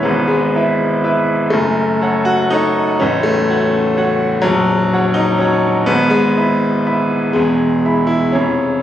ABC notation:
X:1
M:3/4
L:1/8
Q:1/4=123
K:F#dor
V:1 name="Grand piano"
[G,,,G,,]2 [EBe]2 [EBe]2 | [F,,,F,,]2 [Acf]2 [Acf]2 | [A,,,,A,,,]2 [Fcf]2 [Fcf]2 | [K:Elyd] [A,,,,A,,,]2 [Fcf]2 [Fcf]2 |
[G,,,G,,]2 [Eeb]2 [Eeb]2 | [E,,,E,,]2 [Eeb]2 [^E,,,^E,,Gcb]2 |]
V:2 name="Grand piano"
B, G,4- G, | A,3 F D2 | C A,4- A, | [K:Elyd] F,3 D C2 |
B, G,4- G, | G,3 E C2 |]